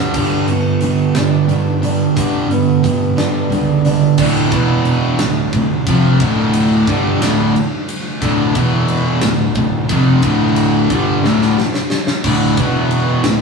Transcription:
Already playing: steel-string acoustic guitar G2, distorted electric guitar G2 D3 G3
0.14 picked electric bass G1, distorted electric guitar G2 D3 G3, steel-string acoustic guitar G2, kick, crash
0.46 picked electric bass G1, distorted electric guitar G2 D3, closed hi-hat
0.50 steel-string acoustic guitar B3
0.80 picked electric bass G1, distorted electric guitar G2 D3, steel-string acoustic guitar G4, closed hi-hat
1.14 picked electric bass G1, distorted electric guitar G2 D3, steel-string acoustic guitar D4, snare, closed hi-hat
1.48 picked electric bass G1, distorted electric guitar G2 D3, steel-string acoustic guitar G3, closed hi-hat
1.82 distorted electric guitar G2 D3, steel-string acoustic guitar D4, closed hi-hat
2.15 picked electric bass G1, distorted electric guitar G2 D3 G3, steel-string acoustic guitar G2, kick, closed hi-hat
2.49 picked electric bass G1, distorted electric guitar G2 D3, steel-string acoustic guitar B3, closed hi-hat
2.83 picked electric bass G1, distorted electric guitar G2 D3, steel-string acoustic guitar G4, kick, closed hi-hat
3.16 picked electric bass G1, distorted electric guitar G2 D3, steel-string acoustic guitar D4, snare, closed hi-hat
3.49 picked electric bass C#2, distorted electric guitar G2 D3, steel-string acoustic guitar G3, closed hi-hat
3.85 distorted electric guitar G2 D3, steel-string acoustic guitar D4, closed hi-hat
4.18 picked electric bass D1, distorted electric guitar D2 A2 D3, string machine F3 A3 D4 A4, kick, crash
4.52 picked electric bass E1, distorted electric guitar E2 B2 E3, string machine E3 B3 E4, kick, ride
4.85 ride
5.19 picked electric bass D1, distorted electric guitar D2 A2, string machine D3 F3 A3 F4, snare, ride
5.53 picked electric bass D1, distorted electric guitar D2 A2, kick, ride
5.86 picked electric bass F1, distorted electric guitar F2 C3 F3, kick, ride
6.20 picked electric bass D1, distorted electric guitar D2 A2 D3, kick, ride
6.53 ride
6.87 picked electric bass G1, distorted electric guitar G2 D3 G3, kick, ride
7.21 picked electric bass D1, distorted electric guitar D2 A2 D3, snare, ride
7.56 ride
7.89 ride
8.21 picked electric bass D1, distorted electric guitar D2 A2 D3, kick, ride
8.55 picked electric bass E1, distorted electric guitar E2 B2 E3, string machine E3 B3 E4, kick, ride
8.88 ride
9.21 picked electric bass D1, distorted electric guitar D2 A2, string machine D3 F3 A3 F4, snare, ride
9.55 picked electric bass D1, distorted electric guitar D2 A2, kick, ride
9.88 picked electric bass F1, distorted electric guitar F2 C3 F3, kick, ride
10.22 picked electric bass D1, distorted electric guitar D2 A2 D3, kick, ride
10.56 ride
10.90 picked electric bass G1, distorted electric guitar G2 D3 G3, kick, ride
11.22 picked electric bass D1, distorted electric guitar D2 A2 D3, snare
11.41 snare
11.58 snare
11.74 snare
11.90 snare
12.07 snare
12.23 picked electric bass D1, distorted electric guitar D2 A2 D3, kick, crash
12.56 picked electric bass E1, distorted electric guitar E2 B2 E3, string machine E3 B3 E4, kick, ride
12.91 ride
13.23 picked electric bass D1, distorted electric guitar D2 A2, string machine D3 F3 A3 F4, snare, ride

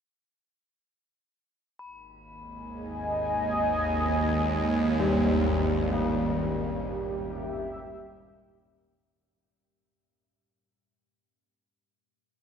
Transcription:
1.79 synth drone G#1 D#2, singing bowl B5
2.31 analog synth pad D#5
2.39 analog synth pad G#5
5.00 church bells G3
5.92 church bells A#3
6.60 analog synth pad G4
7.07 analog synth pad E5

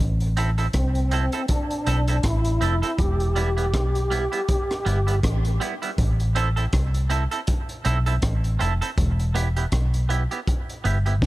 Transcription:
0.00 fingered electric bass A1
0.20 closed hi-hat
0.37 clean electric guitar C4 E4 A4, closed hi-hat
0.58 clean electric guitar C4 E4 A4, closed hi-hat
0.73 fingered electric bass C2, tonewheel organ C4, kick, cross-stick, closed hi-hat
0.95 closed hi-hat
1.11 clean electric guitar C4 E4 A4, closed hi-hat
1.32 clean electric guitar C4 E4 A4, closed hi-hat
1.48 tonewheel organ D4, kick, closed hi-hat
1.71 closed hi-hat
1.87 fingered electric bass B1, clean electric guitar C4 E4 A4, closed hi-hat
2.08 clean electric guitar C4 E4 A4, closed hi-hat
2.23 fingered electric bass A1, tonewheel organ E4, kick, cross-stick, closed hi-hat
2.45 closed hi-hat
2.61 fingered electric bass F1, clean electric guitar C4 E4 A4, closed hi-hat
2.82 clean electric guitar C4 E4 A4, closed hi-hat
2.98 fingered electric bass E1, tonewheel organ G4, kick, closed hi-hat
3.20 closed hi-hat
3.36 clean electric guitar G3 B3 E4, closed hi-hat
3.57 clean electric guitar G3 B3 E4, closed hi-hat
3.74 fingered electric bass B1, kick, cross-stick, closed hi-hat
3.95 closed hi-hat
4.11 clean electric guitar G3 B3 E4, closed hi-hat
4.32 clean electric guitar G3 B3 E4, closed hi-hat
4.48 kick, closed hi-hat
4.71 cross-stick, closed hi-hat
4.85 fingered electric bass G1, clean electric guitar G3 B3 E4, closed hi-hat
5.07 clean electric guitar G3 B3 E4, closed hi-hat
5.23 fingered electric bass A1, kick, cross-stick, closed hi-hat
5.45 closed hi-hat
5.60 clean electric guitar G3 B3 E4, closed hi-hat
5.82 clean electric guitar G3 B3 E4, closed hi-hat
5.98 fingered electric bass A1, kick, closed hi-hat
6.20 closed hi-hat
6.35 clean electric guitar C4 E4 A4, closed hi-hat
6.56 clean electric guitar C4 E4 A4, closed hi-hat
6.73 fingered electric bass C2, kick, cross-stick, closed hi-hat
6.94 closed hi-hat
7.10 clean electric guitar C4 E4 A4, closed hi-hat
7.31 clean electric guitar C4 E4 A4, closed hi-hat
7.47 kick, closed hi-hat
7.69 closed hi-hat
7.85 fingered electric bass B1, clean electric guitar C4 E4 A4, closed hi-hat
8.06 clean electric guitar C4 E4 A4, closed hi-hat
8.22 fingered electric bass A1, kick, cross-stick, closed hi-hat
8.44 closed hi-hat
8.59 fingered electric bass F1, clean electric guitar C4 E4 A4, closed hi-hat
8.81 clean electric guitar C4 E4 A4, closed hi-hat
8.98 fingered electric bass E1, kick, closed hi-hat
9.19 closed hi-hat
9.35 clean electric guitar B3 E4 G4, closed hi-hat
9.56 clean electric guitar B3 E4 G4, closed hi-hat
9.72 fingered electric bass B1, kick, cross-stick, closed hi-hat
9.94 closed hi-hat
10.09 clean electric guitar B3 E4 G4, closed hi-hat
10.31 clean electric guitar B3 E4 G4, closed hi-hat
10.47 kick, closed hi-hat
10.69 closed hi-hat
10.84 fingered electric bass G1, clean electric guitar B3 E4 G4, closed hi-hat
11.06 clean electric guitar B3 E4 G4, closed hi-hat
11.22 fingered electric bass B1, kick, snare

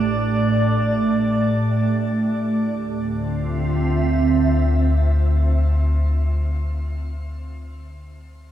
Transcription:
Already playing: synth drone A1, ambient pad A2 A3 G4 D5, synth texture D4 D5
2.70 synth drone D2, ambient pad D3
2.83 ambient pad C4
2.99 ambient pad F4
3.11 ambient pad E5

